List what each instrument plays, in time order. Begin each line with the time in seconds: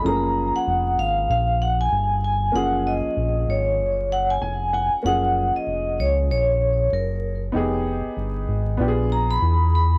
0.02 analog synth bass F#1, upright piano F3 A3 C#4, vibraphone A#5
0.06 upright piano A#3 G#4
0.54 analog synth bass F1, vibraphone F#5
0.67 analog synth bass F1
0.98 analog synth bass G#1, vibraphone F5
1.29 analog synth bass A#1, vibraphone F5
1.62 vibraphone F#5
1.81 vibraphone G#5
1.92 analog synth bass G1
2.24 vibraphone G#5
2.52 analog synth bass F#1, upright piano F3 A#3 C#4, vibraphone F#5
2.56 upright piano G#4
2.87 vibraphone D#5
3.04 analog synth bass A#1
3.17 analog synth bass A#1
3.48 analog synth bass G#1, vibraphone C#5
3.79 analog synth bass F#1
4.12 vibraphone F#5
4.30 vibraphone G#5
4.42 analog synth bass F1, upright piano G#5
4.73 upright piano F#5, vibraphone G#5
4.91 analog synth bass F1
5.03 analog synth bass F#1, upright piano F3 A#3 C#4, vibraphone F#5
5.07 upright piano G#4
5.54 analog synth bass F1, vibraphone D#5
5.67 analog synth bass F1
5.98 analog synth bass C#2, vibraphone C#5
6.29 analog synth bass A#1, vibraphone C#5
6.92 analog synth bass F#1, vibraphone A#4
7.52 analog synth bass F1, upright piano B3 D#4 G4
7.56 upright piano G#4
8.04 analog synth bass G1
8.17 analog synth bass G1
8.48 analog synth bass G#1
8.77 analog synth bass A#1, upright piano B3 D4 F4
8.81 upright piano G4
8.88 upright piano G#4
9.12 vibraphone A#5
9.30 vibraphone B5
9.42 analog synth bass E2
9.75 vibraphone B5